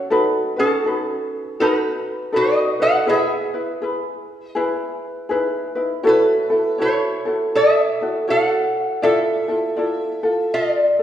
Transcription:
Already playing: ukulele C#4 F#4
0.10 ukulele D#4 F#4 A4 B4
0.56 resonator guitar played with a steel bar C#4 A4, ukulele D#4 F#4 B4
0.84 ukulele D#4 F#4 A4 B4
1.60 ukulele D#4 F#4 A4 B4, resonator guitar played with a steel bar D#4 B4
2.33 ukulele D#4 F#4 A4 B4, resonator guitar played with a steel bar F#4
2.37 resonator guitar played with a steel bar D#5
2.80 ukulele D#4 F#4 B4, resonator guitar played with a steel bar A4 F#5
3.06 ukulele E4 G#4 B4, resonator guitar played with a steel bar G#4 E5
3.54 ukulele E4 B4
3.82 ukulele E4 G#4 B4
4.47 resonator guitar played with a steel bar D#5
4.55 ukulele E4 G#4 B4
5.29 ukulele D#4 E4 G#4 B4
5.75 ukulele D#4 E4 B4
6.03 ukulele E4 F#4 A4 C#5, resonator guitar played with a steel bar E4
6.09 resonator guitar played with a steel bar B4
6.50 ukulele E4 F#4 A4
6.78 ukulele E4 F#4 A4 C#5, resonator guitar played with a steel bar E4 C#5
7.25 ukulele E4 F#4 A4
7.55 resonator guitar played with a steel bar A4 E5
8.01 ukulele E4 F#4 A4
8.28 ukulele E4 F#4 A4 C#5, resonator guitar played with a steel bar A4 F#5
9.02 ukulele E4 F4 A4 D5, resonator guitar played with a steel bar A4 E5
9.48 ukulele E4 F4 A4
9.77 ukulele E4 F4 A4 D5
10.23 ukulele F4 A4
10.54 resonator guitar played with a steel bar F4 D5
10.99 ukulele A4

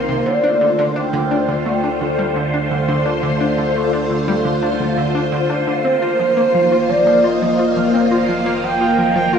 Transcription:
Already playing: sub bass C2, string machine D#3 A#3 F4 C5, analog synth lead A#4
0.09 synth arpeggio sound C3
0.26 sub bass D2, synth arpeggio sound D3, string machine D3 A3 F4 C5, analog synth lead D5
0.43 synth arpeggio sound D4
0.61 synth arpeggio sound D3
0.79 synth arpeggio sound D3
0.96 synth arpeggio sound D4, analog synth lead G5
1.13 synth arpeggio sound D3
1.31 synth arpeggio sound D4
1.49 synth arpeggio sound D3
1.65 synth arpeggio sound A3, analog synth lead G5
1.84 synth arpeggio sound D4
2.01 synth arpeggio sound D3, analog synth lead F5
2.18 synth arpeggio sound G3, analog synth lead F5
2.35 synth arpeggio sound D3, analog synth lead F5
2.54 synth arpeggio sound D4
2.71 synth arpeggio sound D3
2.88 synth arpeggio sound D3
3.05 synth arpeggio sound D4, analog synth lead A4
3.23 synth arpeggio sound D3
3.40 synth arpeggio sound D4
3.58 synth arpeggio sound D3
3.75 synth arpeggio sound A3
3.93 synth arpeggio sound D4
4.10 synth arpeggio sound D3
4.28 synth arpeggio sound G3
4.45 synth arpeggio sound D3
4.63 synth arpeggio sound D4
4.80 synth arpeggio sound D3
4.97 synth arpeggio sound D3
5.15 synth arpeggio sound D4
5.32 synth arpeggio sound D3
5.50 synth arpeggio sound D4
5.67 synth arpeggio sound D3
5.84 sub bass F1, string machine D#3 A#3, synth arpeggio sound C4, analog synth lead C5
6.02 synth arpeggio sound F4
6.19 synth arpeggio sound F3
6.37 synth arpeggio sound A#3
6.54 synth arpeggio sound F3
6.72 synth arpeggio sound F4
6.89 synth arpeggio sound F3, analog synth lead D5
7.07 synth arpeggio sound F3
7.24 synth arpeggio sound F4, analog synth lead D#5
7.42 synth arpeggio sound F3
7.59 synth arpeggio sound F4
7.77 synth arpeggio sound F3
7.94 synth arpeggio sound C4
8.11 synth arpeggio sound F4
8.29 synth arpeggio sound F3, analog synth lead F5
8.46 synth arpeggio sound A#3
8.64 synth arpeggio sound F3, string machine A#4, analog synth lead G5
8.81 synth arpeggio sound F4
8.98 synth arpeggio sound F3
9.16 synth arpeggio sound F3, analog synth lead G5
9.33 synth arpeggio sound F4, analog synth lead F5

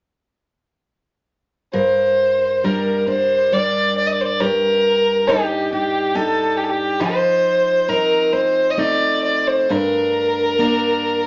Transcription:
1.73 steel-string acoustic guitar G2 A#4, fiddle C5
2.64 steel-string acoustic guitar G3 D4 A#4, fiddle A#4
3.07 steel-string acoustic guitar D4, fiddle C5
3.52 steel-string acoustic guitar G3 D4 A#4, fiddle D5
3.97 fiddle D5
4.07 fiddle D#5
4.12 fiddle D5
4.21 fiddle C5
4.25 fiddle D5
4.40 steel-string acoustic guitar G2 G4, fiddle A#4
5.28 steel-string acoustic guitar D4 D#4 G4, fiddle G4
5.72 steel-string acoustic guitar D4, fiddle G4
6.15 steel-string acoustic guitar D4 D#4 G4, fiddle A4
6.57 fiddle G4
6.64 fiddle A4
6.69 fiddle G4
7.00 steel-string acoustic guitar F3 D#4, fiddle C5
7.88 steel-string acoustic guitar C4 D#4, fiddle A#4
8.33 steel-string acoustic guitar C4, fiddle C5
8.71 fiddle D#5
8.77 steel-string acoustic guitar A3 C4 D#4, fiddle D5
9.24 fiddle D5
9.47 fiddle C5
9.69 steel-string acoustic guitar G2 D4, fiddle A#4
10.59 steel-string acoustic guitar A#3 D4

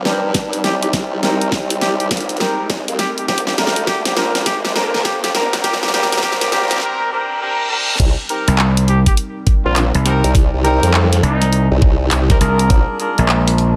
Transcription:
Already playing: ambient pad G3 C4 D#4 A#4, riser
0.05 wobble bass G2, horn section C4 D#4 G4 A#4, snare
0.34 kick, snare, closed hi-hat
0.53 closed hi-hat
0.63 wobble bass C2, trumpet G4, snare, closed hi-hat
0.82 trumpet G4, closed hi-hat
0.93 kick, snare, closed hi-hat
1.23 wobble bass C2, horn section C4 D#4 G4 A#4, snare, closed hi-hat
1.41 closed hi-hat
1.52 kick, snare
1.70 closed hi-hat
1.81 trumpet G4, snare, closed hi-hat
2.00 trumpet G4, closed hi-hat
2.11 wobble bass A#1, kick, snare, closed hi-hat
2.17 closed hi-hat
2.21 closed hi-hat
2.29 closed hi-hat
2.37 horn section C4 D#4 G4 A#4, snare, closed hi-hat
2.70 wobble bass C2, kick, snare, closed hi-hat
2.88 wobble bass D#2, closed hi-hat
2.99 trumpet G4, snare, closed hi-hat
3.18 trumpet G4, closed hi-hat
3.28 wobble bass A#1, ambient pad G#3 D4 F4, trumpet G4, kick, snare
3.38 closed hi-hat
3.47 trumpet G4, snare
3.58 wobble bass D2, horn section C4 D4 G4 A#4, snare, closed hi-hat
3.67 snare
3.76 closed hi-hat
3.87 trumpet G4, kick, snare
4.05 wobble bass A#1, trumpet G4, snare, closed hi-hat
4.17 horn section C4 D4 G4 A#4, snare, closed hi-hat
4.35 wobble bass A#1, snare, closed hi-hat
4.46 wobble bass G#1, trumpet G4, kick, snare, closed hi-hat
4.65 trumpet G4, snare
4.75 wobble bass F2, horn section C4 D4 G4 A#4, snare
4.94 snare
5.05 trumpet G4, kick, snare, closed hi-hat
5.24 trumpet G4, snare, closed hi-hat
5.34 wobble bass A#1, horn section C4 D4 G4 A#4, snare, closed hi-hat
5.53 snare, closed hi-hat
5.63 horn section C4 D4 G4 A#4, trumpet G4, kick, snare, closed hi-hat
5.73 snare
5.83 trumpet G4, snare
5.88 snare
5.93 wobble bass A#1, horn section C4 D4 G4 A#4, trumpet G4, snare, closed hi-hat
6.03 snare
6.12 trumpet G4, snare, closed hi-hat
6.18 snare
6.22 horn section C4 D4 G4 A#4, trumpet G4, kick, snare
6.32 snare
6.41 trumpet G4, snare, closed hi-hat
6.52 horn section C4 D4 G4 A#4, trumpet G4, snare, closed hi-hat
6.62 snare
6.68 snare
6.71 trumpet G4, snare, closed hi-hat
6.73 snare
6.76 snare
6.78 snare
6.80 horn section C4 D4 G4 A#4, snare, reverse cymbal
7.11 horn section C4 D4 G4 A#4
7.41 horn section C4 D4 G4 A#4
7.70 horn section C4 D4 G4 A#4
8.00 wobble bass C2, ambient pad G3 C4 D#4 A#4, kick, closed hi-hat, crash
8.29 horn section C4 D#4 G4 A#4, closed hi-hat
8.48 slap bass C2, closed hi-hat
8.59 clap
8.77 closed hi-hat
8.88 trumpet G4, closed hi-hat
9.06 trumpet G4, kick, closed hi-hat
9.17 closed hi-hat
9.47 kick, closed hi-hat
9.65 wobble bass A#1, trumpet F4
9.76 clap, closed hi-hat
9.95 slap bass C2, closed hi-hat
10.05 horn section C4 D#4 G4 A#4, snare, closed hi-hat
10.24 wobble bass C2, closed hi-hat
10.35 kick, closed hi-hat
10.54 wobble bass C2
10.64 horn section C4 D#4 G4 A#4, closed hi-hat
10.83 wobble bass F2, closed hi-hat
10.94 clap
11.13 snare, closed hi-hat
11.23 slap bass C2, trumpet D#4, closed hi-hat
11.42 snare, closed hi-hat
11.53 closed hi-hat
11.71 wobble bass C2
11.82 kick
12.11 wobble bass C2, clap, closed hi-hat
12.30 horn section C4 D#4 G4 A#4, kick, snare, closed hi-hat
12.40 slap bass C2, horn section D4 F4 G#4 A#4, closed hi-hat
12.59 closed hi-hat
12.70 wobble bass A#1, ambient pad G#3 D4 F4, kick, closed hi-hat
12.99 horn section D4 F4 G#4 A#4, closed hi-hat
13.18 slap bass A#1, closed hi-hat
13.29 clap
13.48 closed hi-hat
13.58 closed hi-hat

